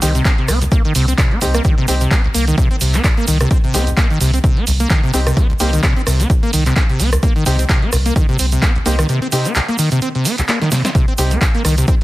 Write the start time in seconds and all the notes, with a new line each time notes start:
0.02 C2 D#3 C4 D#4 G4, open hi-hat, shaker
0.15 C3, closed hi-hat, shaker
0.25 C4, kick, clap, closed hi-hat, shaker
0.38 C3, closed hi-hat
0.48 C2 C4, cross-stick, open hi-hat, shaker
0.61 C2, closed hi-hat, shaker
0.72 A#3, kick, closed hi-hat, shaker
0.85 D#3, closed hi-hat
0.95 C2 C3, open hi-hat, shaker
1.08 C4, closed hi-hat, shaker
1.18 C3, kick, clap, closed hi-hat, shaker
1.31 C4, closed hi-hat
1.41 C2 C4 D#4 G4, open hi-hat, shaker
1.54 A#3, cross-stick, closed hi-hat, shaker
1.64 D#3, kick, closed hi-hat, shaker
1.78 C3, closed hi-hat
1.88 C2 C4 D#4 G4, open hi-hat, shaker
2.01 C3, closed hi-hat, shaker
2.11 C4, kick, clap, closed hi-hat, shaker
2.24 C2, closed hi-hat
2.34 C2 A#3, open hi-hat, shaker
2.47 D#3, closed hi-hat, shaker
2.58 kick, closed hi-hat, shaker
2.71 C4, closed hi-hat
2.81 C2 C3, open hi-hat, shaker
2.94 C4, clap, closed hi-hat, shaker
3.04 C2, kick, clap, closed hi-hat, shaker
3.17 A#3, closed hi-hat
3.28 C2 D#3, open hi-hat, shaker
3.40 C3, cross-stick, closed hi-hat, shaker
3.51 C4, kick, closed hi-hat, shaker
3.64 C3, closed hi-hat
3.74 C2 C4 D#4 G4, open hi-hat, shaker
3.87 C2, closed hi-hat, shaker
3.97 A#3, kick, clap, closed hi-hat, shaker
4.10 D#3, closed hi-hat
4.21 C2 C3, open hi-hat, shaker
4.34 C4, closed hi-hat, shaker
4.44 C3, kick, closed hi-hat, shaker
4.57 C4, closed hi-hat
4.67 C2, open hi-hat, shaker
4.80 A#3, closed hi-hat, shaker
4.90 D#3, kick, clap, closed hi-hat, shaker
5.03 C3, closed hi-hat
5.13 C2 C4 D#4 G4, open hi-hat, shaker
5.27 C3, cross-stick, closed hi-hat, shaker
5.37 C4, kick, closed hi-hat, shaker
5.50 C2, closed hi-hat
5.60 C2 A#3 C4 D#4 G4, open hi-hat, shaker
5.73 D#3, closed hi-hat, shaker
5.83 kick, clap, closed hi-hat, shaker
5.96 C4, closed hi-hat
6.07 C2 C3, cross-stick, open hi-hat, shaker
6.20 C4, closed hi-hat, shaker
6.30 C2, kick, closed hi-hat, shaker
6.43 A#3, closed hi-hat
6.53 C2 D#3, open hi-hat, shaker
6.66 C3, clap, closed hi-hat, shaker
6.76 C4, kick, clap, closed hi-hat, shaker
6.89 C3, closed hi-hat
7.00 C2 C4, open hi-hat, shaker
7.12 C2, cross-stick, closed hi-hat, shaker
7.23 A#3, kick, closed hi-hat, shaker
7.36 D#3, closed hi-hat
7.46 C2 C3 C4 D#4 G4, open hi-hat, shaker
7.59 C4, closed hi-hat, shaker
7.69 C3, kick, clap, closed hi-hat, shaker
7.82 C4, closed hi-hat
7.92 C2, cross-stick, open hi-hat, shaker
8.06 A#3, closed hi-hat, shaker
8.16 D#3, kick, closed hi-hat, shaker
8.29 C3, closed hi-hat
8.39 C2 C4, open hi-hat, shaker
8.52 C3, closed hi-hat, shaker
8.62 C4, kick, clap, closed hi-hat, shaker
8.75 C2, closed hi-hat
8.86 C2 A#3 C4 D#4 G4, open hi-hat, shaker
8.99 D#3, cross-stick, closed hi-hat, shaker
9.09 C3, closed hi-hat, shaker
9.22 C4, closed hi-hat
9.32 C3 C4 D#4 G4, open hi-hat, shaker
9.45 C4, closed hi-hat, shaker
9.55 C2, clap, closed hi-hat, shaker
9.68 A#3, closed hi-hat
9.78 D#3, open hi-hat, shaker
9.91 C3, closed hi-hat, shaker
10.02 C4, closed hi-hat, shaker
10.15 C3, closed hi-hat
10.25 C4, open hi-hat, shaker
10.38 C2, clap, closed hi-hat, shaker
10.48 A#3, clap, closed hi-hat, shaker
10.62 D#3, snare, closed hi-hat
10.71 C3, snare, open hi-hat, shaker
10.85 C4, snare, closed hi-hat, shaker
10.95 C3, kick, closed hi-hat, shaker
11.08 C4, closed hi-hat
11.18 C2 C3 C4 D#4 G4, open hi-hat, shaker
11.31 C4, closed hi-hat, shaker
11.41 C2, kick, clap, closed hi-hat, shaker
11.54 A#3, closed hi-hat
11.65 C2 D#3, cross-stick, open hi-hat, shaker
11.78 C3, closed hi-hat, shaker
11.88 C4, kick, closed hi-hat, shaker